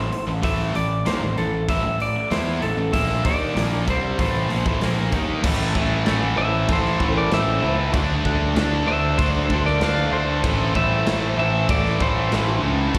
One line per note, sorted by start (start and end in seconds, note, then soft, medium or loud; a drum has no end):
0.00 0.11 A1 medium
0.00 0.11 A2 medium
0.00 0.12 E3 medium
0.00 0.25 C5 medium
0.12 muted distorted electric guitar stroke medium
0.12 muted picked electric bass stroke soft
0.12 open hi-hat medium
0.27 0.42 A1 medium
0.27 0.41 A2 medium
0.27 0.42 E3 medium
0.42 0.72 A1 medium
0.42 0.73 A2 medium
0.42 0.73 E3 loud
0.42 0.74 A3 medium
0.42 0.76 E5 loud
0.42 kick loud
0.42 open hi-hat medium
0.74 1.03 A1 medium
0.74 0.99 A2 medium
0.74 0.99 E3 medium
0.74 1.07 D5 medium
0.74 open hi-hat soft
1.06 1.21 D#2 medium
1.06 1.20 D#3 medium
1.06 1.21 A#3 medium
1.06 1.35 C5 loud
1.06 snare loud
1.06 open hi-hat medium
1.22 1.36 A1 medium
1.22 1.37 A2 medium
1.22 1.37 E3 medium
1.37 1.66 A1 medium
1.37 1.62 A2 medium
1.37 1.63 E3 medium
1.37 1.66 A4 medium
1.37 open hi-hat soft
1.69 1.83 A1 medium
1.69 1.83 A2 medium
1.69 1.84 E3 loud
1.69 2.01 E5 medium
1.69 kick medium
1.69 open hi-hat medium
1.84 2.13 A1 medium
1.84 2.09 A2 medium
1.84 2.09 E3 medium
2.00 2.33 D5 loud
2.00 open hi-hat medium
2.31 2.60 E2 loud
2.31 2.61 E3 loud
2.31 2.61 B3 loud
2.31 2.62 E4 medium
2.31 2.62 C5 medium
2.31 snare loud
2.31 open hi-hat medium
2.62 2.77 A1 medium
2.62 2.77 A2 medium
2.62 2.77 E3 medium
2.62 2.94 A4 medium
2.62 open hi-hat soft
2.77 2.92 A1 medium
2.77 2.93 A2 medium
2.77 2.93 E3 medium
2.93 3.23 A#1 medium
2.93 3.23 A#2 medium
2.93 3.24 F3 loud
2.93 3.24 A#3 loud
2.93 3.25 E5 loud
2.93 kick loud
2.93 open hi-hat medium
3.10 snare soft
3.24 3.54 D#2 loud
3.24 3.55 D#3 medium
3.24 3.55 A#3 medium
3.24 3.55 D#4 medium
3.24 3.83 D5 medium
3.24 kick loud
3.24 open hi-hat medium
3.55 3.84 A#1 medium
3.55 3.86 A#2 medium
3.55 3.86 F3 loud
3.55 3.87 A#3 loud
3.55 snare loud
3.55 open hi-hat medium
3.87 4.17 C2 medium
3.87 4.17 C3 medium
3.87 4.18 G3 medium
3.87 4.18 C4 medium
3.87 4.19 C5 medium
3.87 kick medium
3.87 open hi-hat soft
4.19 4.48 A1 medium
4.19 4.49 A2 medium
4.19 4.49 E3 medium
4.19 4.49 A3 loud
4.19 5.09 C5 medium
4.19 kick loud
4.19 open hi-hat medium
4.50 4.64 A#1 medium
4.50 4.64 A#2 medium
4.50 4.65 F3 medium
4.50 open hi-hat medium
4.66 4.80 A1 medium
4.66 4.80 A2 medium
4.66 4.81 E3 medium
4.66 kick loud
4.81 5.10 A#1 medium
4.81 5.12 A#2 medium
4.81 5.12 F3 medium
4.81 5.12 A#3 loud
4.81 snare medium
4.81 open hi-hat medium
5.12 5.41 D#2 medium
5.12 5.43 D#3 medium
5.12 5.43 A#3 medium
5.12 5.43 D#4 medium
5.12 kick medium
5.12 open hi-hat soft
5.44 5.70 A1 medium
5.44 5.74 A2 medium
5.44 5.75 E3 loud
5.44 5.76 A3 loud
5.44 kick loud
5.44 crash loud
5.44 crash medium
5.75 6.01 A1 medium
5.75 6.05 A2 medium
5.75 6.06 E3 medium
5.75 6.07 A3 medium
5.75 kick medium
6.06 6.33 A1 medium
6.06 6.36 A2 medium
6.06 6.36 E3 medium
6.06 6.38 A3 medium
6.06 snare loud
6.06 crash medium
6.37 6.64 A1 medium
6.37 6.67 A2 medium
6.37 6.68 E3 medium
6.37 6.69 A3 loud
6.37 6.66 C5 medium
6.37 6.69 E5 loud
6.68 6.95 A1 medium
6.68 6.98 A2 loud
6.68 6.98 E3 loud
6.68 7.00 A3 loud
6.68 7.12 A4 medium
6.68 kick loud
6.68 crash medium
6.73 7.14 C5 medium
6.86 snare soft
6.99 7.26 A1 loud
6.99 7.30 A2 medium
6.99 7.30 E3 medium
6.99 7.32 A3 medium
6.99 kick medium
7.16 7.30 A#4 medium
7.16 7.32 D5 medium
7.31 7.58 A1 loud
7.31 7.60 A2 medium
7.31 7.61 E3 loud
7.31 7.63 A3 loud
7.31 7.75 C5 medium
7.31 7.76 E5 medium
7.31 snare loud
7.31 crash medium
7.62 7.89 C#2 medium
7.62 7.91 A2 medium
7.62 7.91 E3 medium
7.62 7.94 A3 medium
7.94 8.20 D2 medium
7.94 8.23 D3 medium
7.94 8.25 A3 loud
7.94 8.24 D4 loud
7.94 kick loud
7.94 crash medium
8.24 8.51 D2 medium
8.24 8.55 D3 medium
8.24 8.56 A3 medium
8.24 8.56 D4 loud
8.24 kick medium
8.56 8.82 D2 loud
8.56 8.86 D3 medium
8.56 8.88 A3 medium
8.56 8.87 D4 loud
8.56 snare loud
8.56 crash medium
8.87 9.13 D2 loud
8.87 9.17 D3 medium
8.87 9.19 A3 medium
8.87 9.19 D4 medium
8.87 9.16 C5 medium
8.87 9.19 E5 loud
9.18 9.45 D2 medium
9.18 9.49 D3 loud
9.18 9.51 A3 loud
9.18 9.50 D4 loud
9.18 9.62 A4 medium
9.18 9.62 C5 medium
9.18 kick loud
9.18 crash medium
9.50 9.77 D2 loud
9.50 9.80 D3 medium
9.50 9.82 A3 loud
9.50 9.81 D4 loud
9.50 kick medium
9.66 9.83 A#4 medium
9.66 9.83 D5 medium
9.66 snare soft
9.81 10.07 D2 loud
9.81 10.10 D3 medium
9.81 10.12 A3 loud
9.81 10.12 D4 loud
9.81 10.13 D5 medium
9.81 10.14 F5 loud
9.81 snare loud
9.81 crash medium
10.11 10.39 D2 medium
10.11 10.41 D3 medium
10.11 10.44 A3 medium
10.11 10.42 D4 loud
10.11 10.72 A4 medium
10.11 10.77 C5 loud
10.43 10.70 A1 medium
10.43 10.73 A2 medium
10.43 10.74 E3 loud
10.43 10.75 A3 medium
10.43 kick loud
10.43 crash medium
10.74 11.02 A1 loud
10.74 11.05 A2 medium
10.74 11.06 E3 medium
10.74 11.07 A3 medium
10.74 11.35 C5 medium
10.74 11.38 E5 loud
10.74 kick medium
11.06 11.33 A1 loud
11.06 11.36 A2 medium
11.06 11.36 E3 loud
11.06 11.38 A3 medium
11.06 snare loud
11.06 crash medium
11.37 11.64 A1 medium
11.37 11.66 A2 medium
11.37 11.67 E3 medium
11.37 11.68 A3 medium
11.37 11.68 C5 medium
11.37 11.70 E5 loud
11.68 11.95 A1 loud
11.68 11.98 A2 loud
11.68 11.98 E3 loud
11.68 11.99 A3 loud
11.68 11.99 A4 medium
11.68 12.02 D5 medium
11.68 kick loud
11.68 crash medium
11.86 snare soft
11.99 12.27 A1 loud
11.99 12.30 A2 medium
11.99 12.31 E3 medium
11.99 12.32 A3 loud
11.99 12.59 A4 medium
11.99 12.60 C5 medium
11.99 kick medium
12.31 12.58 A1 loud
12.31 12.61 A2 medium
12.31 12.62 E3 medium
12.31 12.63 A3 loud
12.31 snare loud
12.31 crash medium
12.62 12.89 C#2 medium
12.62 12.92 A2 medium
12.62 12.92 E3 medium
12.62 12.95 A3 medium
12.94 12.98 D2 medium
12.94 12.98 D3 loud
12.94 12.98 A3 loud
12.94 12.98 D4 loud
12.94 kick loud
12.94 crash medium